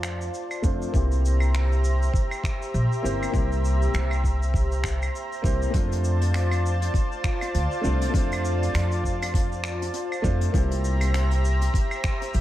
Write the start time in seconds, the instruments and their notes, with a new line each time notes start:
Already playing: upright bass F2, grand piano A3 C4 D4 F4 C5, analog synth pad F4 C5 D5 A5
0.03 finger snap, shaker
0.21 shaker
0.34 shaker
0.51 claves, shaker
0.62 upright bass F2, grand piano A3 C4 D4 F4 C5, kick, shaker
0.82 shaker
0.91 upright bass C2, grand piano A#3 C4 E4, analog synth pad G4 E5 A#5, kick, shaker
0.96 grand piano G4 C5
1.12 shaker
1.25 shaker
1.40 claves, shaker
1.55 finger snap, shaker
1.72 shaker
1.84 shaker
2.02 shaker
2.14 kick, shaker
2.31 claves, shaker
2.44 finger snap, kick, shaker
2.62 shaker
2.74 upright bass A#1, shaker
2.92 shaker
3.02 upright bass G1, grand piano A#3 C4 E4 G4 C5, shaker
3.23 claves, shaker
3.29 grand piano A#3 C4 E4
3.34 upright bass C2, grand piano G4 C5, kick, shaker
3.52 shaker
3.65 shaker
3.82 shaker
3.94 upright bass C2, finger snap, shaker
4.11 claves, shaker
4.24 kick, shaker
4.42 shaker
4.54 kick, shaker
4.72 shaker
4.84 finger snap, kick, shaker
5.02 claves, shaker
5.15 shaker
5.33 shaker
5.42 upright bass C2, grand piano A#3 C4 E4 G4 C5, kick, shaker
5.62 shaker
5.70 upright bass F2, grand piano A3 C4 D4, analog synth pad F4 D5 A5, kick, closed hi-hat
5.75 grand piano F4 C5, shaker
5.92 closed hi-hat, shaker
6.04 shaker
6.21 closed hi-hat, shaker
6.34 finger snap, closed hi-hat, shaker
6.51 closed hi-hat, claves, shaker
6.66 shaker
6.82 closed hi-hat, shaker
6.94 kick, closed hi-hat, shaker
7.12 shaker
7.24 finger snap, kick, shaker
7.41 closed hi-hat, claves, shaker
7.54 upright bass D2, closed hi-hat, shaker
7.72 shaker
7.81 upright bass C2, grand piano A3 C4 D4 F4 C5, shaker
8.02 closed hi-hat, shaker
8.09 grand piano A3 C4 D4
8.14 upright bass F2, grand piano F4 C5, kick, closed hi-hat, shaker
8.32 closed hi-hat, claves, shaker
8.45 shaker
8.63 closed hi-hat, shaker
8.74 upright bass F2, finger snap, closed hi-hat, shaker
8.91 closed hi-hat, shaker
9.04 kick, shaker
9.22 closed hi-hat, claves, shaker
9.34 kick, closed hi-hat, shaker
9.52 shaker
9.64 finger snap, shaker
9.82 closed hi-hat, shaker
9.94 closed hi-hat, shaker
10.12 claves, shaker
10.22 upright bass F2, grand piano A3 C4 D4 F4 C5, kick, shaker
10.41 closed hi-hat, shaker
10.51 upright bass C2, grand piano A#3 C4 E4, analog synth pad G4 C5 E5 A#5, kick, closed hi-hat, shaker
10.56 grand piano G4 C5
10.71 closed hi-hat, shaker
10.84 shaker
11.01 closed hi-hat, claves, shaker
11.14 finger snap, closed hi-hat, shaker
11.31 closed hi-hat, shaker
11.45 shaker
11.62 closed hi-hat, shaker
11.74 kick, closed hi-hat, shaker
11.91 claves, shaker
12.04 finger snap, kick, shaker
12.22 closed hi-hat, shaker
12.34 upright bass A#1, closed hi-hat, shaker